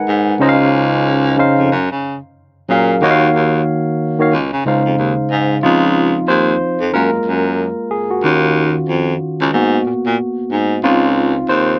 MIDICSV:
0, 0, Header, 1, 3, 480
1, 0, Start_track
1, 0, Key_signature, -5, "major"
1, 0, Tempo, 652174
1, 296, Time_signature, 4, 2, 24, 8
1, 8680, End_track
2, 0, Start_track
2, 0, Title_t, "Tine electric piano"
2, 0, Program_c, 0, 4
2, 0, Control_c, 0, 64, 127
2, 0, Note_on_c, 0, 56, 72
2, 0, Note_on_c, 0, 63, 62
2, 0, Note_on_c, 0, 70, 64
2, 0, Note_on_c, 0, 71, 66
2, 0, Note_on_c, 0, 78, 63
2, 0, Note_on_c, 0, 80, 61
2, 0, Note_on_c, 0, 82, 58
2, 152, Note_off_c, 0, 56, 0
2, 155, Note_off_c, 0, 63, 0
2, 158, Note_off_c, 0, 70, 0
2, 160, Note_off_c, 0, 71, 0
2, 272, Note_off_c, 0, 78, 0
2, 290, Note_on_c, 0, 49, 85
2, 299, Note_on_c, 0, 61, 81
2, 305, Control_c, 0, 64, 0
2, 305, Note_on_c, 0, 63, 86
2, 306, Note_on_c, 0, 72, 87
2, 312, Note_off_c, 0, 80, 0
2, 312, Note_off_c, 0, 82, 0
2, 312, Note_on_c, 0, 75, 83
2, 359, Note_on_c, 0, 77, 107
2, 361, Note_off_c, 0, 75, 0
2, 441, Control_c, 0, 64, 127
2, 869, Note_off_c, 0, 49, 0
2, 874, Note_off_c, 0, 61, 0
2, 877, Note_off_c, 0, 63, 0
2, 877, Note_off_c, 0, 72, 0
2, 904, Note_off_c, 0, 77, 0
2, 1010, Note_on_c, 0, 49, 78
2, 1019, Note_on_c, 0, 61, 70
2, 1023, Note_on_c, 0, 63, 69
2, 1026, Note_on_c, 0, 72, 77
2, 1031, Note_on_c, 0, 77, 90
2, 1253, Note_off_c, 0, 49, 0
2, 1257, Note_off_c, 0, 61, 0
2, 1259, Note_off_c, 0, 63, 0
2, 1261, Note_off_c, 0, 72, 0
2, 1263, Note_off_c, 0, 77, 0
2, 1266, Control_c, 0, 64, 0
2, 1401, Control_c, 0, 64, 127
2, 1978, Note_on_c, 0, 54, 67
2, 1982, Note_on_c, 0, 61, 63
2, 1987, Note_on_c, 0, 68, 59
2, 1990, Note_on_c, 0, 70, 66
2, 1996, Note_on_c, 0, 77, 80
2, 2174, Note_off_c, 0, 54, 0
2, 2176, Note_off_c, 0, 61, 0
2, 2178, Note_off_c, 0, 68, 0
2, 2180, Note_off_c, 0, 70, 0
2, 2183, Note_off_c, 0, 77, 0
2, 2218, Note_on_c, 0, 51, 93
2, 2224, Note_on_c, 0, 58, 85
2, 2226, Control_c, 0, 64, 0
2, 2228, Note_on_c, 0, 66, 84
2, 2235, Note_on_c, 0, 73, 85
2, 2240, Note_on_c, 0, 75, 73
2, 2285, Note_off_c, 0, 75, 0
2, 2288, Note_on_c, 0, 77, 101
2, 2362, Control_c, 0, 64, 127
2, 2884, Note_off_c, 0, 51, 0
2, 2887, Note_off_c, 0, 58, 0
2, 2889, Note_off_c, 0, 66, 0
2, 2892, Note_off_c, 0, 73, 0
2, 2919, Note_off_c, 0, 77, 0
2, 3084, Note_on_c, 0, 51, 72
2, 3090, Note_on_c, 0, 58, 64
2, 3091, Note_on_c, 0, 66, 57
2, 3098, Note_on_c, 0, 73, 64
2, 3105, Note_on_c, 0, 77, 77
2, 3178, Note_off_c, 0, 51, 0
2, 3181, Note_off_c, 0, 58, 0
2, 3181, Note_off_c, 0, 66, 0
2, 3185, Note_off_c, 0, 73, 0
2, 3187, Control_c, 0, 64, 0
2, 3188, Note_off_c, 0, 77, 0
2, 3320, Control_c, 0, 64, 127
2, 3426, Note_on_c, 0, 49, 69
2, 3432, Note_on_c, 0, 56, 65
2, 3434, Note_on_c, 0, 63, 69
2, 3440, Note_on_c, 0, 72, 67
2, 3445, Note_on_c, 0, 77, 70
2, 3997, Note_off_c, 0, 49, 0
2, 4000, Note_off_c, 0, 56, 0
2, 4001, Note_off_c, 0, 63, 0
2, 4004, Note_off_c, 0, 72, 0
2, 4007, Note_off_c, 0, 77, 0
2, 4145, Note_on_c, 0, 65, 87
2, 4146, Control_c, 0, 64, 0
2, 4148, Note_on_c, 0, 53, 50
2, 4156, Note_on_c, 0, 60, 48
2, 4157, Note_on_c, 0, 63, 53
2, 4265, Control_c, 0, 64, 127
2, 4625, Note_on_c, 0, 72, 96
2, 4635, Note_off_c, 0, 65, 0
2, 5071, Note_off_c, 0, 72, 0
2, 5072, Note_off_c, 0, 53, 0
2, 5076, Note_off_c, 0, 60, 0
2, 5077, Note_off_c, 0, 63, 0
2, 5104, Control_c, 0, 64, 0
2, 5105, Note_on_c, 0, 70, 84
2, 5113, Note_on_c, 0, 56, 51
2, 5116, Note_on_c, 0, 58, 43
2, 5119, Note_on_c, 0, 65, 52
2, 5250, Control_c, 0, 64, 127
2, 5795, Note_off_c, 0, 56, 0
2, 5797, Note_off_c, 0, 58, 0
2, 5798, Note_off_c, 0, 65, 0
2, 5821, Note_on_c, 0, 68, 75
2, 5842, Note_off_c, 0, 70, 0
2, 5884, Note_off_c, 0, 68, 0
2, 5966, Note_on_c, 0, 66, 67
2, 6064, Note_on_c, 0, 51, 55
2, 6065, Control_c, 0, 64, 0
2, 6068, Note_on_c, 0, 61, 46
2, 6072, Note_on_c, 0, 65, 51
2, 6184, Control_c, 0, 64, 127
2, 6990, Note_off_c, 0, 51, 0
2, 6993, Note_off_c, 0, 61, 0
2, 6995, Note_off_c, 0, 65, 0
2, 7024, Note_off_c, 0, 66, 0
2, 7026, Control_c, 0, 64, 0
2, 7026, Note_on_c, 0, 58, 51
2, 7029, Note_on_c, 0, 59, 43
2, 7033, Note_on_c, 0, 66, 56
2, 7164, Control_c, 0, 64, 127
2, 7951, Note_off_c, 0, 58, 0
2, 7953, Note_off_c, 0, 59, 0
2, 7955, Note_off_c, 0, 66, 0
2, 7977, Note_on_c, 0, 65, 80
2, 7981, Note_on_c, 0, 60, 54
2, 7986, Control_c, 0, 64, 0
2, 7986, Note_on_c, 0, 63, 45
2, 7991, Note_off_c, 0, 65, 0
2, 7991, Note_on_c, 0, 65, 57
2, 8129, Control_c, 0, 64, 127
2, 8315, Note_off_c, 0, 60, 0
2, 8318, Note_off_c, 0, 63, 0
2, 8321, Note_off_c, 0, 65, 0
2, 8459, Note_on_c, 0, 72, 93
2, 8680, Note_off_c, 0, 72, 0
2, 8680, End_track
3, 0, Start_track
3, 0, Title_t, "Baritone saxophone"
3, 0, Program_c, 1, 67
3, 60, Note_on_c, 1, 44, 86
3, 252, Note_off_c, 1, 44, 0
3, 303, Note_on_c, 1, 37, 99
3, 990, Note_off_c, 1, 37, 0
3, 1025, Note_on_c, 1, 41, 35
3, 1080, Note_off_c, 1, 41, 0
3, 1165, Note_on_c, 1, 41, 69
3, 1241, Note_off_c, 1, 41, 0
3, 1263, Note_on_c, 1, 42, 89
3, 1376, Note_off_c, 1, 42, 0
3, 1410, Note_on_c, 1, 49, 67
3, 1599, Note_off_c, 1, 49, 0
3, 1984, Note_on_c, 1, 46, 80
3, 2174, Note_off_c, 1, 46, 0
3, 2225, Note_on_c, 1, 39, 107
3, 2415, Note_off_c, 1, 39, 0
3, 2468, Note_on_c, 1, 39, 83
3, 2657, Note_off_c, 1, 39, 0
3, 3187, Note_on_c, 1, 37, 75
3, 3298, Note_off_c, 1, 37, 0
3, 3332, Note_on_c, 1, 49, 74
3, 3405, Note_off_c, 1, 49, 0
3, 3427, Note_on_c, 1, 37, 71
3, 3538, Note_off_c, 1, 37, 0
3, 3570, Note_on_c, 1, 41, 67
3, 3644, Note_off_c, 1, 41, 0
3, 3667, Note_on_c, 1, 39, 66
3, 3778, Note_off_c, 1, 39, 0
3, 3907, Note_on_c, 1, 44, 78
3, 4096, Note_off_c, 1, 44, 0
3, 4146, Note_on_c, 1, 37, 95
3, 4529, Note_off_c, 1, 37, 0
3, 4625, Note_on_c, 1, 39, 85
3, 4815, Note_off_c, 1, 39, 0
3, 5010, Note_on_c, 1, 41, 77
3, 5084, Note_off_c, 1, 41, 0
3, 5105, Note_on_c, 1, 42, 84
3, 5217, Note_off_c, 1, 42, 0
3, 5248, Note_on_c, 1, 42, 44
3, 5285, Note_off_c, 1, 42, 0
3, 5341, Note_on_c, 1, 42, 77
3, 5648, Note_off_c, 1, 42, 0
3, 6059, Note_on_c, 1, 39, 100
3, 6445, Note_off_c, 1, 39, 0
3, 6539, Note_on_c, 1, 41, 77
3, 6731, Note_off_c, 1, 41, 0
3, 6924, Note_on_c, 1, 37, 87
3, 7000, Note_off_c, 1, 37, 0
3, 7016, Note_on_c, 1, 44, 88
3, 7210, Note_off_c, 1, 44, 0
3, 7261, Note_on_c, 1, 46, 37
3, 7317, Note_off_c, 1, 46, 0
3, 7404, Note_on_c, 1, 46, 78
3, 7480, Note_off_c, 1, 46, 0
3, 7739, Note_on_c, 1, 44, 86
3, 7932, Note_off_c, 1, 44, 0
3, 7976, Note_on_c, 1, 37, 92
3, 8364, Note_off_c, 1, 37, 0
3, 8460, Note_on_c, 1, 39, 87
3, 8652, Note_off_c, 1, 39, 0
3, 8680, End_track
0, 0, End_of_file